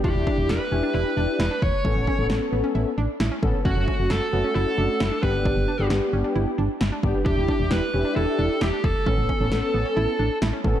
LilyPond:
<<
  \new Staff \with { instrumentName = "Lead electric guitar" } { \time 4/4 \key e \dorian \tempo 4 = 133 g'4 b'4 b'4. cis''8~ | cis''4 r2. | fis'4 a'4 a'4. b'8~ | b'4 r2. |
g'4 b'4 a'4 g'8 a'8~ | a'2. r4 | }
  \new Staff \with { instrumentName = "Analog polysynth" } { \time 4/4 \key e \dorian e'16 <d' e' g'>4 r16 <d' e' g'>4. r4 | <b cis' a'>8 r16 <b cis' a'>4. r4 r16 <b cis' a'>8 | <a cis' fis'>16 <a cis' fis'>4 r16 <a cis' fis'>4. r8 <b d' g'>8~ | <b d' g'>8 r16 <b d' g'>4. r4 r16 <b d' g'>8 |
<d' e' g'>16 <d' e' g'>4 r16 <d' e' g'>4. r4 | <b cis' a'>8 r16 <b cis' a'>4. r4 r16 <b cis' a'>8 | }
  \new Staff \with { instrumentName = "Synth arpeggio sound" } { \time 4/4 \key e \dorian d'8 d'8 r8 cis'16 d'16 e'8 d'8 e'16 d'8 r16 | cis'8 cis'8 r8 b16 cis'16 e'8 d'8 e'16 cis'8 r16 | cis'8 cis'8 r8 b16 cis'16 e'8 d'8 e'16 d'8 r16 | d'8 d'8 r8 cis'16 d'16 e'8 d'8 e'16 d'8 r16 |
d'8 d'8 r8 cis'16 d'16 e'8 d'8 e'16 d'8 r16 | cis'8 cis'8 r8 b16 cis'16 e'8 d'8 e'16 cis'8 r16 | }
  \new Staff \with { instrumentName = "FM bass" } { \clef bass \time 4/4 \key e \dorian e,,16 e,,16 r16 e,,16 e,,16 r16 e,,16 r16 e,,16 r16 e,,16 r16 e,,16 r16 e,,16 r16 | a,,16 a,,16 r16 a,,16 a,,16 r16 a,,16 r16 a,,16 r16 a,,16 r16 a,,16 r16 a,,16 r16 | fis,,16 fis,,16 r16 fis,,16 fis,,16 r16 fis,,16 r16 fis,,16 r16 fis,,16 r16 fis,,16 r16 g,,8~ | g,,16 g,,16 r16 g,,16 g,,16 r16 g,,16 r16 g,,16 r16 g,,16 r16 g,,16 r16 g,,16 r16 |
e,,16 e,,16 r16 e,,16 e,,16 r16 e,,16 r16 e,,16 r16 e,,16 r16 e,,16 r16 e,,16 r16 | a,,16 a,,16 r16 a,,16 a,,16 r16 a,,16 r16 a,,16 r16 a,,16 r16 a,,16 r16 a,,16 r16 | }
  \new DrumStaff \with { instrumentName = "Drums" } \drummode { \time 4/4 bd8 bd8 sn4 r4 sn8 bd8 | bd8 bd8 sn4 r4 sn8 bd8 | bd8 bd8 sn4 r4 sn8 bd8 | bd4 sn4 r4 sn8 bd8 |
bd8 bd8 sn4 r4 sn8 bd8 | bd8 bd8 sn4 r4 sn8 bd8 | }
>>